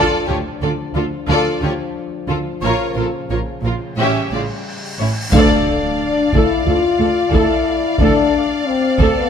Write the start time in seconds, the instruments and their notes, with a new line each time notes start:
Already playing: french horn section F3 D4, viola section F4, violin section A4 D5
0.28 double bass section D2, cello section D3, viola section F4, violin section G4 C#5
0.62 double bass section D2, cello section D3, viola section F4, violin section A4 D5
0.95 double bass section D2, cello section D3, violin section F4 A4, viola section F4
1.28 double bass section D2, cello section D3, viola section F4, violin section A4 D5
1.62 double bass section D2, cello section D3, viola section F4, violin section G4 C#5
2.28 double bass section D2, cello section D3, violin section F4 A4, viola section F4
2.61 double bass section A#1, cello section A#2, french horn section C#3, viola section F4, violin section A#4 C#5, cymbal swell
2.95 double bass section A#1, cello section A#2, viola section F4, violin section A4 A#4
3.29 double bass section A#1, cello section A#2, viola section F4, violin section A#4 C#5
3.63 double bass section A#1, cello section A#2, violin section F4 A#4, viola section F4
3.96 double bass section A1, cello section A2, french horn section G3, viola section C#4, violin section G4 E5
4.31 double bass section A1, cello section A2, viola section C#3, violin section F4 D5
4.99 double bass section A1, cello section A2, viola section C#4, violin section E4 C#5
5.32 cello section D2, double bass section D2, french horn section D4, viola section A4, violin section D5 F5, taiko, impact
6.33 cello section D2, double bass section D2, french horn section E4, viola section A4, taiko
6.66 double bass section D2, cello section D2, french horn section F4, viola section A4
6.99 double bass section D2, cello section D2, viola section A4
7.31 double bass section D2, cello section D2, french horn section E4, viola section A4, taiko
7.98 double bass section D2, cello section D2, french horn section D4, viola section A4, taiko
8.66 french horn section C4
8.98 double bass section D2, cello section D2, viola section A4, taiko
9.18 french horn section B3